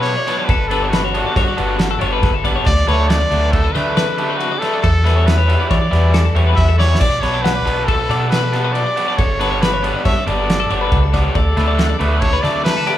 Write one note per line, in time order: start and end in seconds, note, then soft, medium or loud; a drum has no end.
0.00 0.12 B2 medium
0.00 0.13 B2 medium
0.00 0.13 F#3 medium
0.00 0.12 B3 medium
0.00 0.12 D4 medium
0.00 0.17 B4 medium
0.00 0.47 C#5 loud
0.05 ride loud
0.17 0.27 D5 medium
0.27 0.50 B2 medium
0.27 0.49 F#3 medium
0.27 0.49 B3 medium
0.27 0.49 D4 medium
0.27 0.38 B4 medium
0.27 snare soft
0.27 ride medium
0.39 0.49 D5 medium
0.45 1.20 G1 loud
0.45 0.70 B4 medium
0.45 kick loud
0.45 ride loud
0.50 0.71 A4 medium
0.68 0.99 D3 medium
0.68 0.99 G3 medium
0.68 0.99 B3 loud
0.68 0.99 D4 loud
0.68 0.91 A4 medium
0.68 0.83 B4 medium
0.68 ride medium
0.83 0.93 C#5 medium
0.89 2.21 F#4 medium
0.89 snare loud
0.89 ride loud
0.94 1.04 B4 medium
1.04 1.25 C#5 medium
1.14 1.43 D3 medium
1.14 1.42 G3 medium
1.14 1.42 B3 medium
1.14 1.42 D4 medium
1.14 ride medium
1.26 1.36 D5 medium
1.36 1.54 G2 medium
1.36 1.47 C#5 medium
1.36 kick loud
1.36 snare soft
1.36 ride loud
1.48 1.59 D5 medium
1.57 1.93 G1 medium
1.57 1.86 D3 medium
1.57 1.86 G3 medium
1.57 1.86 B3 medium
1.57 1.85 D4 loud
1.57 1.80 B4 medium
1.57 ride medium
1.79 1.90 A4 loud
1.79 snare loud
1.79 ride loud
1.91 2.01 A4 medium
2.00 2.19 G1 medium
2.00 2.30 D3 medium
2.00 2.30 G3 medium
2.00 2.29 B3 medium
2.00 2.29 D4 medium
2.00 2.12 C#5 medium
2.00 ride medium
2.13 2.34 B4 medium
2.23 2.59 G1 loud
2.23 kick loud
2.23 snare soft
2.23 ride loud
2.34 2.45 A4 medium
2.45 2.67 D3 medium
2.45 2.67 G3 medium
2.45 2.66 B3 medium
2.45 2.66 D4 medium
2.45 2.55 D5 medium
2.45 kick medium
2.45 ride medium
2.56 2.66 C#5 medium
2.66 2.84 D2 loud
2.66 2.90 D5 loud
2.66 2.88 D5 loud
2.66 kick loud
2.66 ride loud
2.87 3.23 D2 medium
2.87 3.16 D3 medium
2.87 3.16 F#3 medium
2.87 3.16 A3 medium
2.87 3.16 D4 loud
2.87 2.99 B4 medium
2.87 3.10 C#5 loud
2.87 ride medium
2.99 3.10 D5 medium
3.08 3.53 D5 loud
3.08 3.20 F#5 medium
3.08 snare loud
3.08 ride loud
3.21 3.43 D5 medium
3.31 3.67 D2 loud
3.31 3.60 D3 medium
3.31 3.60 F#3 medium
3.31 3.60 A3 medium
3.31 3.59 D4 medium
3.31 ride medium
3.43 3.53 B4 medium
3.52 3.74 A4 loud
3.52 3.64 A4 medium
3.52 kick loud
3.52 ride loud
3.64 3.75 B4 medium
3.73 4.46 D3 medium
3.73 4.03 D3 medium
3.73 4.03 F#3 medium
3.73 4.03 A3 loud
3.73 4.03 D4 loud
3.73 4.39 B4 loud
3.73 3.96 D5 medium
3.73 snare soft
3.73 ride medium
3.97 4.08 B4 medium
3.97 snare loud
3.97 ride loud
4.08 4.19 A4 medium
4.18 4.47 D3 medium
4.18 4.47 F#3 medium
4.18 4.47 A3 medium
4.18 4.46 D4 medium
4.18 4.30 G4 medium
4.18 ride medium
4.30 4.52 B4 medium
4.37 4.60 F#4 medium
4.37 ride loud
4.52 4.62 D5 medium
4.58 4.84 A3 medium
4.58 4.83 D4 loud
4.58 4.82 A4 loud
4.58 ride medium
4.62 4.84 D3 medium
4.62 4.84 F#3 medium
4.62 4.73 B4 medium
4.62 snare soft
4.73 4.84 D5 medium
4.82 5.55 E2 loud
4.82 5.28 A4 loud
4.82 5.05 A4 loud
4.82 kick loud
4.82 ride loud
5.05 5.34 E3 medium
5.05 5.33 G3 medium
5.05 5.33 B3 loud
5.05 5.33 E4 loud
5.05 5.16 B4 medium
5.05 snare soft
5.05 ride medium
5.16 5.28 C#5 medium
5.26 5.70 B4 loud
5.26 5.37 B4 medium
5.26 snare loud
5.26 ride loud
5.38 5.59 C#5 medium
5.48 5.77 E3 medium
5.48 5.77 G3 medium
5.48 5.77 B3 medium
5.48 5.76 E4 medium
5.48 ride medium
5.60 5.70 D5 medium
5.69 5.88 E3 medium
5.69 5.81 C#5 medium
5.69 6.35 D5 medium
5.69 kick loud
5.69 snare soft
5.69 ride loud
5.82 5.93 D5 medium
5.91 6.28 E2 medium
5.91 6.20 E3 medium
5.91 6.20 G3 medium
5.91 6.20 B3 medium
5.91 6.20 E4 medium
5.91 6.14 B4 medium
5.91 snare soft
5.91 ride medium
6.14 6.24 A4 medium
6.14 snare loud
6.14 ride loud
6.25 6.36 A4 medium
6.35 6.53 E2 medium
6.35 6.64 E3 medium
6.35 6.64 G3 medium
6.35 6.64 B3 medium
6.35 6.63 E4 medium
6.35 6.46 C#5 medium
6.35 ride medium
6.47 6.68 B4 medium
6.56 6.93 E2 loud
6.56 6.77 E5 loud
6.56 kick loud
6.56 snare soft
6.56 ride loud
6.68 6.79 A4 medium
6.78 7.01 E3 medium
6.78 7.01 G3 medium
6.78 7.01 B3 medium
6.78 7.00 E4 loud
6.78 7.01 C#5 loud
6.78 6.90 D5 medium
6.78 snare medium
6.90 7.01 C#5 medium
6.95 snare medium
6.99 7.19 B1 loud
6.99 7.22 D5 loud
6.99 7.24 D5 loud
6.99 kick loud
6.99 ride loud
6.99 crash loud
7.21 7.58 B1 medium
7.21 7.51 B2 medium
7.21 7.51 F#3 medium
7.21 7.51 B3 medium
7.21 7.51 D4 medium
7.21 7.33 B4 medium
7.21 7.43 C#5 loud
7.21 snare soft
7.21 ride medium
7.33 7.44 D5 medium
7.42 7.87 B4 loud
7.42 7.55 F#5 medium
7.42 snare loud
7.42 ride loud
7.56 7.78 D5 medium
7.65 8.01 B1 loud
7.65 7.94 B2 medium
7.65 7.94 F#3 medium
7.65 7.94 B3 medium
7.65 7.94 D4 medium
7.65 ride medium
7.78 7.88 B4 medium
7.85 8.29 A4 loud
7.85 8.00 A4 medium
7.85 kick loud
7.85 ride loud
8.00 8.10 B4 medium
8.09 8.81 B2 medium
8.09 8.38 B2 medium
8.09 8.38 F#3 medium
8.09 8.38 B3 loud
8.09 8.38 D4 medium
8.09 8.32 D5 medium
8.09 ride medium
8.30 8.74 B4 loud
8.30 8.43 B4 medium
8.30 snare loud
8.30 ride loud
8.43 8.54 A4 medium
8.53 8.82 B2 medium
8.53 8.81 F#3 medium
8.53 8.81 B3 medium
8.53 8.81 D4 medium
8.53 8.64 G4 medium
8.53 snare soft
8.53 ride medium
8.64 8.86 B4 medium
8.72 9.18 D5 loud
8.72 ride loud
8.86 8.97 D5 medium
8.97 9.19 B2 medium
8.97 9.18 F#3 medium
8.97 9.18 B3 medium
8.97 9.18 D4 medium
8.97 9.08 B4 medium
8.97 ride medium
9.08 9.18 D5 medium
9.17 9.90 G1 loud
9.17 9.40 A4 medium
9.17 9.63 C#5 loud
9.17 kick loud
9.17 ride loud
9.40 9.68 D3 medium
9.40 9.68 G3 medium
9.40 9.68 B3 medium
9.40 9.68 D4 loud
9.40 9.51 B4 medium
9.40 ride medium
9.51 9.61 C#5 medium
9.61 10.04 B4 loud
9.61 9.72 B4 medium
9.61 snare loud
9.61 ride loud
9.73 9.95 C#5 medium
9.83 10.12 D3 medium
9.83 10.12 G3 medium
9.83 10.12 B3 medium
9.83 10.11 D4 medium
9.83 ride medium
9.95 10.05 D5 medium
10.05 10.23 G2 medium
10.05 10.17 C#5 medium
10.05 10.25 E5 loud
10.05 kick loud
10.05 ride loud
10.17 10.27 D5 medium
10.27 10.62 G1 medium
10.27 10.55 D3 medium
10.27 10.55 G3 medium
10.27 10.55 B3 medium
10.27 10.55 D4 loud
10.27 10.49 B4 medium
10.27 11.10 D5 medium
10.27 ride medium
10.49 10.59 A4 medium
10.49 snare loud
10.49 ride loud
10.60 10.71 A4 medium
10.70 10.88 G1 medium
10.70 10.99 D3 medium
10.70 10.98 G3 medium
10.70 10.98 B3 medium
10.70 10.98 D4 medium
10.70 10.81 C#5 medium
10.70 ride medium
10.81 11.03 B4 medium
10.92 11.28 C#2 loud
10.92 kick loud
10.92 ride medium
11.03 11.14 A4 medium
11.13 11.35 D3 medium
11.13 11.35 G3 medium
11.13 11.35 B3 medium
11.13 11.35 D4 medium
11.13 11.24 D5 medium
11.13 kick medium
11.13 snare soft
11.13 ride medium
11.24 11.35 C#5 medium
11.35 11.53 D2 loud
11.35 11.97 A4 medium
11.35 11.57 D5 medium
11.35 kick loud
11.35 ride loud
11.57 11.92 D2 loud
11.57 11.85 D3 medium
11.57 11.85 F#3 medium
11.57 11.85 A3 loud
11.57 11.85 D4 loud
11.57 11.67 B4 medium
11.57 snare soft
11.57 ride medium
11.68 11.79 D5 medium
11.79 11.89 F#5 medium
11.79 snare loud
11.79 ride loud
11.89 12.11 D5 medium
11.99 12.36 D2 medium
11.99 12.28 D3 medium
11.99 12.28 F#3 medium
11.99 12.28 A3 medium
11.99 12.28 D4 medium
11.99 12.22 B4 medium
11.99 ride medium
12.11 12.22 B4 medium
12.20 12.33 A4 medium
12.20 12.43 C#5 loud
12.20 kick loud
12.20 ride loud
12.33 12.43 B4 medium
12.41 12.98 D3 medium
12.41 12.72 D3 medium
12.41 12.72 F#3 medium
12.41 12.72 A3 medium
12.41 12.71 D4 loud
12.41 12.64 D5 loud
12.41 12.65 D5 medium
12.41 ride medium
12.45 snare soft
12.64 12.98 B4 loud
12.64 12.76 B4 medium
12.64 snare loud
12.64 ride loud
12.77 12.87 A4 medium
12.86 12.98 D3 medium
12.86 12.98 F#3 medium
12.86 12.98 A3 medium
12.86 12.98 D4 medium
12.86 12.98 G4 medium
12.86 ride medium